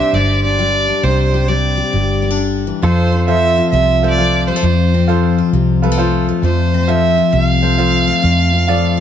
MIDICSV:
0, 0, Header, 1, 6, 480
1, 0, Start_track
1, 0, Tempo, 450450
1, 1095, Time_signature, 4, 2, 24, 8
1, 9591, End_track
2, 0, Start_track
2, 0, Title_t, "Fiddle"
2, 0, Program_c, 0, 110
2, 0, Note_on_c, 0, 76, 99
2, 154, Note_on_c, 0, 74, 91
2, 170, Note_off_c, 0, 76, 0
2, 455, Note_off_c, 0, 74, 0
2, 461, Note_on_c, 0, 74, 104
2, 1102, Note_on_c, 0, 72, 83
2, 1117, Note_off_c, 0, 74, 0
2, 1582, Note_on_c, 0, 74, 77
2, 1598, Note_off_c, 0, 72, 0
2, 2538, Note_off_c, 0, 74, 0
2, 3015, Note_on_c, 0, 72, 83
2, 3461, Note_off_c, 0, 72, 0
2, 3489, Note_on_c, 0, 76, 100
2, 3938, Note_off_c, 0, 76, 0
2, 3957, Note_on_c, 0, 76, 95
2, 4334, Note_off_c, 0, 76, 0
2, 4357, Note_on_c, 0, 74, 98
2, 4732, Note_off_c, 0, 74, 0
2, 4765, Note_on_c, 0, 72, 88
2, 5684, Note_off_c, 0, 72, 0
2, 6850, Note_on_c, 0, 72, 82
2, 7329, Note_on_c, 0, 76, 100
2, 7345, Note_off_c, 0, 72, 0
2, 7808, Note_off_c, 0, 76, 0
2, 7808, Note_on_c, 0, 76, 106
2, 7925, Note_off_c, 0, 76, 0
2, 7925, Note_on_c, 0, 77, 106
2, 9591, Note_off_c, 0, 77, 0
2, 9591, End_track
3, 0, Start_track
3, 0, Title_t, "Grand piano"
3, 0, Program_c, 1, 0
3, 3492, Note_on_c, 1, 65, 63
3, 3492, Note_on_c, 1, 69, 64
3, 3501, Note_on_c, 1, 72, 74
3, 3919, Note_off_c, 1, 65, 0
3, 3919, Note_off_c, 1, 69, 0
3, 3923, Note_off_c, 1, 72, 0
3, 4285, Note_on_c, 1, 65, 62
3, 4289, Note_on_c, 1, 69, 61
3, 4299, Note_on_c, 1, 72, 78
3, 4426, Note_off_c, 1, 65, 0
3, 4428, Note_off_c, 1, 69, 0
3, 4433, Note_off_c, 1, 72, 0
3, 4451, Note_on_c, 1, 65, 69
3, 4460, Note_on_c, 1, 69, 67
3, 4463, Note_on_c, 1, 72, 73
3, 4878, Note_off_c, 1, 65, 0
3, 4883, Note_off_c, 1, 69, 0
3, 4885, Note_off_c, 1, 72, 0
3, 5408, Note_on_c, 1, 65, 83
3, 5411, Note_on_c, 1, 69, 75
3, 5419, Note_on_c, 1, 72, 92
3, 5837, Note_off_c, 1, 65, 0
3, 5839, Note_off_c, 1, 69, 0
3, 5843, Note_off_c, 1, 72, 0
3, 6204, Note_on_c, 1, 65, 72
3, 6208, Note_on_c, 1, 69, 71
3, 6212, Note_on_c, 1, 71, 81
3, 6346, Note_off_c, 1, 65, 0
3, 6347, Note_off_c, 1, 69, 0
3, 6350, Note_off_c, 1, 71, 0
3, 6368, Note_on_c, 1, 65, 89
3, 6370, Note_on_c, 1, 69, 74
3, 6376, Note_on_c, 1, 72, 95
3, 6797, Note_off_c, 1, 65, 0
3, 6798, Note_off_c, 1, 69, 0
3, 6801, Note_off_c, 1, 72, 0
3, 7328, Note_on_c, 1, 65, 73
3, 7335, Note_on_c, 1, 69, 62
3, 7338, Note_on_c, 1, 72, 72
3, 7757, Note_off_c, 1, 65, 0
3, 7761, Note_off_c, 1, 69, 0
3, 7762, Note_off_c, 1, 72, 0
3, 8121, Note_on_c, 1, 65, 61
3, 8121, Note_on_c, 1, 69, 53
3, 8126, Note_on_c, 1, 72, 73
3, 8264, Note_off_c, 1, 65, 0
3, 8264, Note_off_c, 1, 69, 0
3, 8267, Note_off_c, 1, 72, 0
3, 8289, Note_on_c, 1, 65, 75
3, 8290, Note_on_c, 1, 69, 60
3, 8296, Note_on_c, 1, 72, 78
3, 8718, Note_off_c, 1, 65, 0
3, 8718, Note_off_c, 1, 69, 0
3, 8722, Note_off_c, 1, 72, 0
3, 9246, Note_on_c, 1, 65, 81
3, 9254, Note_on_c, 1, 69, 67
3, 9256, Note_on_c, 1, 74, 96
3, 9591, Note_off_c, 1, 65, 0
3, 9591, Note_off_c, 1, 69, 0
3, 9591, Note_off_c, 1, 74, 0
3, 9591, End_track
4, 0, Start_track
4, 0, Title_t, "Pedal steel guitar"
4, 0, Program_c, 2, 26
4, 0, Note_on_c, 2, 62, 69
4, 0, Note_on_c, 2, 67, 59
4, 0, Note_on_c, 2, 72, 56
4, 2990, Note_off_c, 2, 62, 0
4, 2993, Note_off_c, 2, 67, 0
4, 3000, Note_off_c, 2, 72, 0
4, 3019, Note_on_c, 2, 65, 64
4, 3029, Note_on_c, 2, 69, 68
4, 3047, Note_on_c, 2, 72, 61
4, 9591, Note_off_c, 2, 65, 0
4, 9591, Note_off_c, 2, 69, 0
4, 9591, Note_off_c, 2, 72, 0
4, 9591, End_track
5, 0, Start_track
5, 0, Title_t, "Steel-string acoustic guitar"
5, 0, Program_c, 3, 25
5, 0, Note_on_c, 3, 48, 63
5, 0, Note_on_c, 3, 55, 56
5, 0, Note_on_c, 3, 62, 59
5, 0, Note_on_c, 3, 67, 59
5, 138, Note_off_c, 3, 48, 0
5, 147, Note_on_c, 3, 43, 60
5, 459, Note_off_c, 3, 62, 0
5, 475, Note_on_c, 3, 62, 50
5, 613, Note_off_c, 3, 55, 0
5, 619, Note_off_c, 3, 67, 0
5, 626, Note_on_c, 3, 55, 55
5, 632, Note_on_c, 3, 67, 65
5, 930, Note_off_c, 3, 62, 0
5, 942, Note_on_c, 3, 62, 57
5, 1080, Note_off_c, 3, 43, 0
5, 1082, Note_off_c, 3, 62, 0
5, 1083, Note_off_c, 3, 67, 0
5, 1101, Note_on_c, 3, 48, 67
5, 1106, Note_on_c, 3, 67, 58
5, 1413, Note_off_c, 3, 67, 0
5, 1427, Note_on_c, 3, 67, 70
5, 1567, Note_off_c, 3, 55, 0
5, 1580, Note_on_c, 3, 55, 61
5, 1876, Note_off_c, 3, 67, 0
5, 1889, Note_on_c, 3, 67, 61
5, 2055, Note_on_c, 3, 43, 56
5, 2058, Note_off_c, 3, 48, 0
5, 2368, Note_on_c, 3, 59, 56
5, 2456, Note_off_c, 3, 59, 0
5, 2456, Note_on_c, 3, 62, 48
5, 2520, Note_on_c, 3, 50, 55
5, 2840, Note_off_c, 3, 50, 0
5, 2846, Note_on_c, 3, 52, 57
5, 2994, Note_off_c, 3, 43, 0
5, 2995, Note_off_c, 3, 67, 0
5, 3009, Note_on_c, 3, 41, 70
5, 3013, Note_off_c, 3, 52, 0
5, 3017, Note_off_c, 3, 55, 0
5, 3017, Note_off_c, 3, 62, 0
5, 3019, Note_on_c, 3, 65, 69
5, 3329, Note_on_c, 3, 60, 55
5, 3495, Note_on_c, 3, 53, 54
5, 3809, Note_off_c, 3, 65, 0
5, 3813, Note_on_c, 3, 65, 61
5, 3979, Note_on_c, 3, 48, 59
5, 4306, Note_on_c, 3, 57, 55
5, 4455, Note_off_c, 3, 53, 0
5, 4457, Note_off_c, 3, 48, 0
5, 4460, Note_on_c, 3, 53, 52
5, 4470, Note_off_c, 3, 65, 0
5, 4474, Note_on_c, 3, 65, 66
5, 4771, Note_off_c, 3, 57, 0
5, 4775, Note_on_c, 3, 55, 55
5, 4858, Note_off_c, 3, 55, 0
5, 4858, Note_on_c, 3, 57, 47
5, 4929, Note_off_c, 3, 41, 0
5, 4933, Note_on_c, 3, 41, 74
5, 4934, Note_off_c, 3, 65, 0
5, 4938, Note_off_c, 3, 57, 0
5, 4939, Note_on_c, 3, 65, 68
5, 5262, Note_off_c, 3, 60, 0
5, 5266, Note_on_c, 3, 60, 59
5, 5421, Note_off_c, 3, 53, 0
5, 5425, Note_on_c, 3, 53, 57
5, 5732, Note_off_c, 3, 65, 0
5, 5737, Note_on_c, 3, 65, 62
5, 5897, Note_on_c, 3, 48, 56
5, 6218, Note_on_c, 3, 55, 55
5, 6303, Note_off_c, 3, 55, 0
5, 6303, Note_on_c, 3, 57, 49
5, 6376, Note_off_c, 3, 48, 0
5, 6382, Note_off_c, 3, 53, 0
5, 6386, Note_on_c, 3, 53, 60
5, 6390, Note_off_c, 3, 65, 0
5, 6395, Note_on_c, 3, 65, 54
5, 6686, Note_off_c, 3, 57, 0
5, 6699, Note_on_c, 3, 57, 59
5, 6849, Note_off_c, 3, 41, 0
5, 6853, Note_on_c, 3, 41, 63
5, 6861, Note_off_c, 3, 65, 0
5, 6866, Note_on_c, 3, 65, 61
5, 7179, Note_off_c, 3, 60, 0
5, 7183, Note_on_c, 3, 60, 59
5, 7335, Note_off_c, 3, 53, 0
5, 7340, Note_on_c, 3, 53, 61
5, 7643, Note_off_c, 3, 65, 0
5, 7647, Note_on_c, 3, 65, 59
5, 7807, Note_on_c, 3, 48, 59
5, 8126, Note_off_c, 3, 57, 0
5, 8130, Note_on_c, 3, 57, 55
5, 8281, Note_off_c, 3, 53, 0
5, 8287, Note_off_c, 3, 65, 0
5, 8292, Note_off_c, 3, 48, 0
5, 8294, Note_on_c, 3, 53, 60
5, 8300, Note_on_c, 3, 65, 58
5, 8599, Note_off_c, 3, 57, 0
5, 8603, Note_on_c, 3, 57, 62
5, 8749, Note_off_c, 3, 41, 0
5, 8755, Note_off_c, 3, 53, 0
5, 8758, Note_off_c, 3, 65, 0
5, 8762, Note_on_c, 3, 41, 67
5, 8769, Note_on_c, 3, 65, 58
5, 9087, Note_off_c, 3, 60, 0
5, 9091, Note_on_c, 3, 60, 63
5, 9253, Note_on_c, 3, 53, 57
5, 9550, Note_off_c, 3, 65, 0
5, 9591, Note_off_c, 3, 41, 0
5, 9591, Note_off_c, 3, 53, 0
5, 9591, Note_off_c, 3, 57, 0
5, 9591, Note_off_c, 3, 60, 0
5, 9591, End_track
6, 0, Start_track
6, 0, Title_t, "Fingered electric bass"
6, 0, Program_c, 4, 33
6, 135, Note_on_c, 4, 31, 65
6, 957, Note_off_c, 4, 31, 0
6, 1099, Note_on_c, 4, 36, 89
6, 1920, Note_off_c, 4, 36, 0
6, 2057, Note_on_c, 4, 31, 71
6, 2878, Note_off_c, 4, 31, 0
6, 3008, Note_on_c, 4, 41, 77
6, 3834, Note_off_c, 4, 41, 0
6, 3967, Note_on_c, 4, 36, 80
6, 4793, Note_off_c, 4, 36, 0
6, 4930, Note_on_c, 4, 41, 78
6, 5755, Note_off_c, 4, 41, 0
6, 5889, Note_on_c, 4, 36, 71
6, 6714, Note_off_c, 4, 36, 0
6, 6845, Note_on_c, 4, 41, 76
6, 7672, Note_off_c, 4, 41, 0
6, 7810, Note_on_c, 4, 36, 82
6, 8635, Note_off_c, 4, 36, 0
6, 8776, Note_on_c, 4, 41, 88
6, 9591, Note_off_c, 4, 41, 0
6, 9591, End_track
0, 0, End_of_file